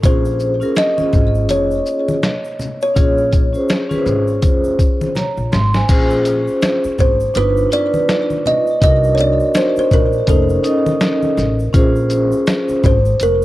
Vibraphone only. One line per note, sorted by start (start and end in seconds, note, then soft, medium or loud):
0.02 0.48 C#4 medium
0.02 0.48 F4 medium
0.02 0.49 G#4 medium
0.02 0.49 C5 medium
0.60 0.89 C#4 medium
0.60 0.89 F4 medium
0.60 0.89 G#4 medium
0.60 0.90 A#4 medium
0.97 2.12 C#4 medium
0.97 2.13 F4 medium
0.97 2.13 G#4 medium
0.97 2.14 D#5 medium
2.94 3.40 C#4 medium
2.94 3.41 F4 medium
2.94 3.41 G#4 medium
2.94 3.42 C#5 medium
3.53 3.81 C#4 medium
3.53 3.82 F4 medium
3.53 3.82 G#4 medium
3.53 3.83 C5 medium
3.89 5.05 C#4 medium
3.89 5.05 F4 medium
3.89 5.06 G#4 medium
3.89 3.97 B4 medium
3.98 5.09 C5 loud
5.15 5.51 C#5 medium
5.15 5.50 A#5 medium
5.52 5.73 C6 medium
5.75 5.90 C5 medium
5.75 6.09 G#5 medium
5.88 7.05 C#4 medium
5.88 7.06 F4 medium
5.88 7.06 G#4 medium
5.88 7.07 C5 loud
7.34 7.65 D4 medium
7.34 7.66 D#4 medium
7.34 7.66 F4 medium
7.34 7.67 B4 medium
7.70 8.60 D4 medium
7.70 8.61 D#4 medium
7.70 8.61 F4 medium
7.70 8.62 B4 medium
8.81 9.98 D4 medium
8.81 9.98 D#4 medium
8.81 9.99 F#4 medium
8.81 10.00 A#4 medium
10.27 10.58 C#4 medium
10.27 10.58 D#4 medium
10.27 10.59 A4 medium
10.27 10.59 C5 medium
10.63 11.53 C#4 medium
10.63 11.54 D#4 medium
10.63 11.54 A4 medium
10.63 11.55 D#5 medium
11.73 12.90 C#4 loud
11.73 12.91 F4 medium
11.73 12.91 G#4 medium
11.73 12.92 C5 loud